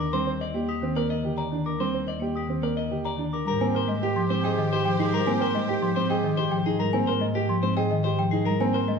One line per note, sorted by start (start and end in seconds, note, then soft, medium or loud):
0.00 3.32 D#2 medium
0.00 0.17 A#4 medium
0.00 0.17 D6 medium
0.13 0.31 G3 medium
0.13 0.31 C4 medium
0.13 0.31 C5 medium
0.13 0.31 C6 medium
0.27 0.45 C5 medium
0.41 0.59 D5 medium
0.41 0.59 D#5 medium
0.54 0.73 A#3 medium
0.54 0.73 G4 medium
0.69 0.87 G4 medium
0.69 0.87 D#6 medium
0.82 1.00 D#3 medium
0.82 1.01 C4 medium
0.96 1.14 A#3 medium
0.96 1.14 A#4 medium
0.96 1.10 D5 medium
1.10 1.28 D#5 medium
1.23 1.42 D3 medium
1.23 1.42 G4 medium
1.37 1.56 D5 medium
1.37 1.56 A#5 medium
1.52 1.70 D#3 medium
1.52 1.70 D4 medium
1.66 1.84 A#4 medium
1.66 1.84 D6 medium
1.79 1.97 G3 medium
1.79 1.98 C4 medium
1.79 1.98 C5 medium
1.79 1.98 C6 medium
1.94 2.12 C5 medium
2.07 2.26 D5 medium
2.07 2.26 D#5 medium
2.20 2.39 A#3 medium
2.20 2.40 G4 medium
2.35 2.54 G4 medium
2.35 2.53 D#6 medium
2.48 2.67 D#3 medium
2.48 2.67 C4 medium
2.61 2.81 A#3 medium
2.61 2.81 A#4 medium
2.61 2.77 D5 medium
2.77 2.95 D#5 medium
2.90 3.09 D3 medium
2.90 3.09 G4 medium
3.05 3.23 D5 medium
3.05 3.23 A#5 medium
3.17 3.36 D#3 medium
3.17 3.37 D4 medium
3.33 3.47 A#4 medium
3.33 3.51 D6 medium
3.45 8.99 G#2 medium
3.45 3.64 G3 medium
3.45 6.62 G4 medium
3.45 3.65 A#4 loud
3.45 6.62 C5 medium
3.45 3.65 A#5 medium
3.60 3.78 A#3 medium
3.60 3.79 C4 medium
3.60 3.79 G#5 medium
3.75 3.92 A#4 medium
3.75 3.93 C5 medium
3.88 4.06 G#3 loud
3.88 4.06 D#5 medium
4.03 4.20 G4 medium
4.16 4.34 F3 medium
4.16 4.34 C6 medium
4.29 4.48 G#3 medium
4.29 4.48 C4 medium
4.29 4.45 C5 medium
4.44 4.62 G#4 loud
4.44 4.62 D#5 medium
4.44 4.62 G5 medium
4.57 4.76 D#3 medium
4.57 4.76 D#5 medium
4.72 4.90 G4 medium
4.72 4.90 C5 loud
4.85 5.03 F3 medium
4.85 5.03 G5 medium
4.99 5.17 D#4 medium
4.99 5.14 G#4 medium
5.13 5.31 G3 medium
5.13 5.31 A#4 loud
5.13 5.31 A#5 medium
5.27 5.45 A#3 medium
5.27 5.45 C4 medium
5.27 5.45 G#5 loud
5.41 5.59 A#4 medium
5.41 5.59 C5 medium
5.54 5.73 G#3 loud
5.54 5.73 D#5 medium
5.69 5.87 G4 medium
5.82 6.00 F3 medium
5.82 6.00 C6 medium
5.96 6.14 G#3 medium
5.96 6.15 C4 medium
5.96 6.09 C5 medium
6.10 6.28 G#4 loud
6.10 6.28 D#5 medium
6.10 6.28 G5 medium
6.24 6.42 D#3 medium
6.24 6.42 D#5 medium
6.37 6.56 G4 medium
6.37 6.56 C5 loud
6.51 6.70 F3 medium
6.51 6.70 G5 medium
6.66 6.84 D#4 medium
6.66 6.79 G#4 medium
6.79 6.98 G3 medium
6.79 6.98 A#4 medium
6.79 6.98 A#5 medium
6.93 7.12 A#3 medium
6.93 7.12 C4 medium
6.93 7.12 G#5 loud
7.07 7.26 A#4 medium
7.07 7.25 C5 medium
7.20 7.39 G#3 loud
7.20 7.39 D#5 medium
7.35 7.53 G4 medium
7.49 7.67 F3 medium
7.49 7.67 C6 medium
7.63 7.81 G#3 medium
7.63 7.81 C4 medium
7.63 7.76 C5 loud
7.77 7.95 G#4 medium
7.77 7.95 D#5 medium
7.77 7.95 G5 medium
7.91 8.09 D#3 medium
7.91 8.09 D#5 medium
8.04 8.23 G4 medium
8.04 8.23 C5 loud
8.19 8.37 F3 medium
8.19 8.37 G5 loud
8.31 8.51 D#4 medium
8.31 8.45 G#4 medium
8.45 8.65 G3 medium
8.45 8.64 A#4 medium
8.45 8.64 A#5 medium
8.60 8.78 A#3 medium
8.60 8.78 C4 medium
8.60 8.78 G#5 loud
8.74 8.92 A#4 medium
8.74 8.92 C5 medium
8.88 8.99 G#3 loud
8.88 8.99 D#5 medium